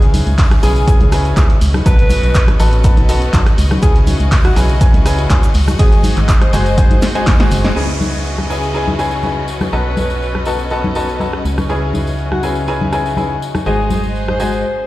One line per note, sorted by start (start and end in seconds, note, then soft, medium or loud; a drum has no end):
0.00 0.23 C#2 loud
0.00 0.60 C#3 medium
0.00 5.79 C#4 medium
0.00 0.60 E4 medium
0.00 14.65 F#4 medium
0.00 0.60 G#4 medium
0.00 0.68 G#4 medium
0.00 0.60 B4 medium
0.00 0.60 C#5 medium
0.00 14.65 D#5 medium
0.00 0.60 G#5 loud
0.00 snare soft
0.00 closed hi-hat soft
0.14 open hi-hat loud
0.14 tambourine medium
0.14 high conga medium
0.14 shaker medium
0.27 0.60 C#2 medium
0.27 closed hi-hat soft
0.27 tambourine soft
0.38 kick loud
0.38 snare loud
0.38 clap loud
0.38 closed hi-hat medium
0.38 open hi-hat medium
0.45 5.79 B4 medium
0.51 cross-stick medium
0.51 snare soft
0.51 closed hi-hat soft
0.51 high conga medium
0.63 0.97 B1 medium
0.63 0.85 C#3 medium
0.63 0.85 E4 medium
0.63 1.12 G#4 medium
0.63 0.85 G#4 medium
0.63 0.85 B4 medium
0.63 0.85 C#5 medium
0.63 0.85 G#5 medium
0.63 snare soft
0.63 open hi-hat medium
0.63 tambourine medium
0.63 shaker medium
0.76 closed hi-hat soft
0.76 tambourine medium
0.88 1.09 C#3 loud
0.88 1.09 E4 medium
0.88 1.09 G#4 medium
0.88 1.09 B4 medium
0.88 1.09 C#5 medium
0.88 1.09 G#5 loud
0.88 kick loud
0.88 closed hi-hat medium
0.88 shaker medium
1.01 1.33 C#2 medium
1.01 closed hi-hat soft
1.01 high conga medium
1.12 1.33 C#3 medium
1.12 1.33 E4 medium
1.12 1.33 G#4 medium
1.12 1.33 B4 medium
1.12 1.33 C#5 medium
1.12 1.33 G#5 loud
1.12 cross-stick medium
1.12 open hi-hat loud
1.12 tambourine medium
1.12 shaker medium
1.25 closed hi-hat soft
1.25 tambourine soft
1.36 1.47 C#2 loud
1.36 1.53 C#3 medium
1.36 1.53 E4 medium
1.36 1.53 G#4 medium
1.36 1.53 B4 medium
1.36 1.53 C#5 medium
1.36 1.53 G#5 medium
1.36 kick loud
1.36 snare loud
1.36 clap loud
1.36 closed hi-hat medium
1.36 tambourine soft
1.36 high conga medium
1.36 shaker medium
1.50 snare soft
1.50 closed hi-hat soft
1.61 1.82 C#2 medium
1.61 open hi-hat medium
1.61 tambourine medium
1.61 shaker medium
1.73 cross-stick medium
1.73 snare soft
1.73 tambourine soft
1.73 high conga medium
1.86 2.20 B1 loud
1.86 2.57 B3 medium
1.86 2.57 F#4 medium
1.86 2.57 A4 medium
1.86 2.57 B4 medium
1.86 2.55 B4 medium
1.86 2.57 D#5 medium
1.86 2.57 A5 loud
1.86 kick loud
1.86 closed hi-hat medium
1.86 tambourine soft
1.86 shaker medium
1.99 snare soft
1.99 closed hi-hat soft
2.09 open hi-hat loud
2.09 tambourine medium
2.09 high conga medium
2.09 shaker medium
2.23 2.56 B1 medium
2.23 closed hi-hat soft
2.23 tambourine soft
2.34 kick loud
2.34 snare loud
2.34 clap loud
2.34 closed hi-hat medium
2.34 shaker medium
2.48 cross-stick medium
2.48 closed hi-hat soft
2.48 high conga medium
2.59 2.94 A1 loud
2.59 2.82 B3 medium
2.59 2.82 F#4 medium
2.59 2.82 A4 medium
2.59 2.82 B4 medium
2.59 2.82 D#5 medium
2.59 2.82 A5 loud
2.59 open hi-hat medium
2.59 tambourine medium
2.59 shaker medium
2.73 closed hi-hat soft
2.73 tambourine soft
2.84 3.06 B3 loud
2.84 3.06 F#4 medium
2.84 3.06 A4 medium
2.84 3.06 B4 medium
2.84 3.06 D#5 medium
2.84 3.06 A5 loud
2.84 kick loud
2.84 closed hi-hat medium
2.84 tambourine soft
2.84 shaker medium
2.97 3.30 B1 medium
2.97 snare soft
2.97 closed hi-hat soft
2.97 high conga medium
3.09 3.30 B3 medium
3.09 3.30 F#4 medium
3.09 3.30 A4 medium
3.09 3.30 B4 medium
3.09 3.30 D#5 medium
3.09 3.30 A5 loud
3.09 open hi-hat loud
3.09 tambourine medium
3.09 shaker medium
3.21 snare soft
3.21 closed hi-hat soft
3.21 tambourine medium
3.33 3.44 B1 loud
3.33 3.50 F#4 medium
3.33 3.50 A4 medium
3.33 3.50 B4 medium
3.33 3.50 D#5 medium
3.33 3.50 A5 medium
3.33 kick loud
3.33 snare loud
3.33 clap loud
3.33 closed hi-hat medium
3.33 tambourine soft
3.33 high conga medium
3.33 shaker medium
3.46 cross-stick medium
3.46 snare medium
3.46 closed hi-hat soft
3.58 3.78 C#2 medium
3.58 open hi-hat medium
3.58 tambourine medium
3.58 shaker medium
3.71 cross-stick medium
3.71 snare soft
3.71 tambourine soft
3.71 high conga medium
3.82 4.16 C#2 loud
3.82 4.54 C#3 medium
3.82 4.54 E4 medium
3.82 3.97 G#4 medium
3.82 4.54 G#4 medium
3.82 4.54 B4 medium
3.82 4.54 C#5 medium
3.82 4.54 G#5 loud
3.82 kick loud
3.82 closed hi-hat medium
3.82 shaker medium
3.95 snare soft
3.95 closed hi-hat soft
4.07 open hi-hat medium
4.07 tambourine medium
4.07 high conga medium
4.07 shaker medium
4.20 4.53 C#2 medium
4.20 closed hi-hat soft
4.20 tambourine medium
4.32 kick loud
4.32 snare loud
4.32 clap loud
4.32 closed hi-hat medium
4.32 open hi-hat medium
4.32 tambourine soft
4.45 4.58 F#4 medium
4.45 cross-stick medium
4.45 snare soft
4.45 closed hi-hat soft
4.45 high conga medium
4.56 4.90 B1 loud
4.56 4.78 C#3 medium
4.56 4.78 E4 medium
4.56 4.78 G#4 medium
4.56 4.78 B4 medium
4.56 4.78 C#5 medium
4.56 4.78 G#5 medium
4.56 snare soft
4.56 open hi-hat medium
4.56 tambourine medium
4.56 shaker medium
4.69 closed hi-hat soft
4.69 tambourine medium
4.81 5.03 C#3 medium
4.81 5.03 E4 medium
4.81 5.03 G#4 medium
4.81 5.03 B4 medium
4.81 5.03 C#5 medium
4.81 5.03 G#5 loud
4.81 kick loud
4.81 closed hi-hat medium
4.81 shaker medium
4.94 5.27 C#2 medium
4.94 closed hi-hat soft
4.94 high conga medium
5.05 5.27 C#3 medium
5.05 5.27 E4 medium
5.05 5.27 G#4 medium
5.05 5.27 B4 medium
5.05 5.27 C#5 medium
5.05 5.27 G#5 loud
5.05 cross-stick medium
5.05 snare loud
5.05 open hi-hat loud
5.05 tambourine medium
5.05 shaker medium
5.18 closed hi-hat soft
5.18 tambourine soft
5.30 5.41 C#2 loud
5.30 5.47 C#3 medium
5.30 5.47 E4 medium
5.30 5.47 G#4 medium
5.30 5.47 B4 medium
5.30 5.47 G#5 medium
5.30 kick loud
5.30 clap loud
5.30 closed hi-hat medium
5.30 tambourine soft
5.30 high conga medium
5.30 shaker medium
5.43 snare loud
5.43 closed hi-hat soft
5.43 shaker medium
5.54 5.75 C#2 medium
5.54 snare medium
5.54 open hi-hat medium
5.54 tambourine medium
5.67 cross-stick medium
5.67 tambourine soft
5.67 high conga medium
5.67 shaker medium
5.79 6.13 G#1 loud
5.79 6.50 G#3 medium
5.79 6.50 F#4 medium
5.79 6.50 G#4 medium
5.79 6.17 G#4 medium
5.79 6.50 C5 medium
5.79 6.50 D#5 medium
5.79 6.50 G#5 loud
5.79 kick loud
5.79 snare loud
5.79 closed hi-hat loud
5.79 open hi-hat medium
5.79 tambourine soft
5.92 closed hi-hat soft
5.97 8.55 G#4 medium
6.04 open hi-hat loud
6.04 tambourine medium
6.04 high conga loud
6.04 shaker medium
6.17 6.50 G#1 medium
6.17 clap soft
6.17 closed hi-hat soft
6.17 tambourine soft
6.28 7.76 C5 medium
6.28 kick loud
6.28 snare loud
6.28 clap loud
6.28 closed hi-hat loud
6.28 shaker medium
6.41 7.10 C5 medium
6.41 cross-stick medium
6.41 closed hi-hat soft
6.41 high conga medium
6.53 6.92 F#1 loud
6.53 6.75 G#3 medium
6.53 6.75 F#4 medium
6.53 6.75 G#4 medium
6.53 6.75 C5 medium
6.53 6.75 D#5 medium
6.53 6.75 G#5 loud
6.53 open hi-hat medium
6.53 tambourine medium
6.53 shaker medium
6.66 closed hi-hat soft
6.66 tambourine soft
6.78 7.00 G#3 medium
6.78 7.00 F#4 medium
6.78 7.00 G#4 medium
6.78 6.99 C5 medium
6.78 6.99 D#5 medium
6.78 6.99 G#5 loud
6.78 kick loud
6.78 closed hi-hat loud
6.78 tambourine soft
6.78 shaker medium
6.91 7.00 G#1 loud
6.91 closed hi-hat soft
6.91 high conga loud
7.02 snare medium
7.02 open hi-hat loud
7.02 tambourine medium
7.02 shaker medium
7.15 7.31 G#3 medium
7.15 7.31 F#4 medium
7.15 7.31 G#4 medium
7.15 7.31 C5 medium
7.15 7.31 D#5 medium
7.15 7.31 G#5 medium
7.15 snare soft
7.15 closed hi-hat soft
7.15 tambourine soft
7.26 7.38 G#1 medium
7.26 kick loud
7.26 snare loud
7.26 snare medium
7.26 clap loud
7.26 closed hi-hat medium
7.26 open hi-hat medium
7.26 tambourine soft
7.26 high conga medium
7.40 7.55 G#3 medium
7.40 7.55 F#4 medium
7.40 7.55 G#4 medium
7.40 7.55 C5 medium
7.40 7.55 D#5 medium
7.40 7.55 G#5 loud
7.40 snare medium
7.40 snare soft
7.40 closed hi-hat soft
7.51 7.72 F#1 loud
7.51 snare soft
7.51 open hi-hat medium
7.51 tambourine medium
7.51 shaker medium
7.64 7.74 F#4 medium
7.64 7.74 G#4 medium
7.64 7.74 C5 medium
7.64 7.74 D#5 medium
7.64 7.74 G#5 medium
7.64 snare medium
7.64 snare loud
7.64 open hi-hat medium
7.64 tambourine medium
7.64 high conga medium
7.76 9.70 C#2 medium
7.76 8.47 C#3 medium
7.76 13.66 C#4 medium
7.76 8.47 E4 medium
7.76 7.91 G#4 medium
7.76 8.47 G#4 medium
7.76 8.47 B4 medium
7.76 8.47 C#5 medium
7.76 8.47 G#5 medium
7.76 tambourine soft
7.76 downlifter medium
8.01 tambourine medium
8.01 high conga medium
8.13 tambourine soft
8.25 tambourine soft
8.33 13.66 B4 medium
8.38 cross-stick medium
8.38 high conga medium
8.50 8.72 C#3 medium
8.50 8.72 E4 medium
8.50 8.72 G#4 medium
8.50 8.99 G#4 medium
8.50 8.72 B4 medium
8.50 8.72 C#5 medium
8.50 8.72 G#5 medium
8.50 tambourine medium
8.63 tambourine soft
8.74 8.96 C#3 medium
8.74 8.96 E4 medium
8.74 8.96 G#4 medium
8.74 8.96 B4 medium
8.74 8.96 C#5 medium
8.74 8.96 G#5 loud
8.74 tambourine soft
8.88 high conga medium
8.99 9.20 C#3 medium
8.99 9.20 E4 medium
8.99 9.20 G#4 medium
8.99 9.20 B4 medium
8.99 9.20 C#5 medium
8.99 9.20 G#5 medium
8.99 cross-stick medium
8.99 tambourine medium
9.11 tambourine soft
9.23 9.40 C#3 medium
9.23 9.40 E4 medium
9.23 9.40 G#4 medium
9.23 9.40 B4 medium
9.23 9.40 C#5 medium
9.23 9.40 G#5 medium
9.23 tambourine soft
9.23 high conga medium
9.48 tambourine medium
9.61 cross-stick medium
9.61 tambourine soft
9.61 high conga medium
9.73 11.43 B1 medium
9.73 10.44 B3 medium
9.73 10.44 F#4 medium
9.73 10.44 A4 medium
9.73 10.42 B4 medium
9.73 10.44 B4 medium
9.73 10.44 D#5 medium
9.73 10.44 A5 medium
9.73 tambourine soft
9.97 tambourine medium
9.97 high conga medium
10.10 tambourine medium
10.22 tambourine soft
10.35 cross-stick medium
10.35 high conga medium
10.45 10.68 B3 medium
10.45 10.68 F#4 medium
10.45 10.68 A4 medium
10.45 10.68 B4 medium
10.45 10.68 D#5 medium
10.45 10.68 A5 medium
10.45 tambourine medium
10.59 tambourine medium
10.70 10.93 B3 medium
10.70 10.93 F#4 medium
10.70 10.93 A4 medium
10.70 10.93 B4 medium
10.70 10.93 D#5 medium
10.70 10.93 A5 medium
10.70 tambourine soft
10.84 high conga medium
10.95 11.17 B3 medium
10.95 11.17 F#4 medium
10.95 11.17 A4 medium
10.95 11.17 B4 medium
10.95 11.17 D#5 medium
10.95 11.17 A5 medium
10.95 tambourine medium
11.09 tambourine soft
11.20 11.37 F#4 medium
11.20 11.37 A4 medium
11.20 11.37 B4 medium
11.20 11.37 D#5 medium
11.20 11.37 A5 medium
11.20 tambourine soft
11.20 high conga medium
11.33 cross-stick medium
11.45 13.39 C#2 medium
11.45 tambourine medium
11.58 cross-stick medium
11.58 tambourine medium
11.58 high conga medium
11.69 12.40 C#3 medium
11.69 12.40 E4 medium
11.69 12.40 G#4 medium
11.69 11.84 G#4 medium
11.69 12.40 B4 medium
11.69 12.40 C#5 medium
11.69 12.40 G#5 medium
11.69 tambourine soft
11.94 tambourine medium
11.94 high conga medium
12.07 tambourine soft
12.18 tambourine soft
12.32 12.45 F#4 medium
12.32 cross-stick medium
12.32 high conga medium
12.43 12.65 C#3 medium
12.43 12.65 E4 medium
12.43 12.65 G#4 medium
12.43 12.65 B4 medium
12.43 12.65 C#5 medium
12.43 12.65 G#5 medium
12.43 tambourine medium
12.56 tambourine medium
12.68 12.90 C#3 medium
12.68 12.90 E4 medium
12.68 12.90 G#4 medium
12.68 12.90 B4 medium
12.68 12.90 C#5 medium
12.68 12.90 G#5 loud
12.68 tambourine soft
12.81 high conga medium
12.92 13.14 C#3 medium
12.92 13.14 E4 medium
12.92 13.14 G#4 medium
12.92 13.14 B4 medium
12.92 13.14 C#5 medium
12.92 13.14 G#5 loud
12.92 cross-stick medium
12.92 tambourine medium
13.06 tambourine soft
13.17 13.34 C#3 medium
13.17 13.34 E4 medium
13.17 13.34 G#4 medium
13.17 13.34 B4 medium
13.17 13.34 C#5 medium
13.17 13.34 G#5 medium
13.17 tambourine soft
13.17 high conga medium
13.42 tambourine medium
13.55 cross-stick medium
13.55 tambourine soft
13.55 high conga medium
13.66 14.65 G#1 medium
13.66 14.37 G#3 medium
13.66 14.37 F#4 medium
13.66 14.37 G#4 medium
13.66 14.04 G#4 medium
13.66 14.37 C5 medium
13.66 14.37 D#5 medium
13.66 14.37 G#5 medium
13.66 tambourine soft
13.80 14.65 C5 medium
13.90 tambourine medium
13.90 high conga medium
14.04 14.65 G#4 medium
14.04 tambourine soft
14.16 tambourine soft
14.28 14.87 C5 medium
14.28 cross-stick medium
14.28 high conga medium
14.40 14.62 G#3 medium
14.40 14.62 F#4 medium
14.40 14.62 G#4 medium
14.40 14.62 C5 medium
14.40 14.62 D#5 medium
14.40 14.62 G#5 medium
14.40 tambourine medium
14.53 tambourine soft
14.65 swell medium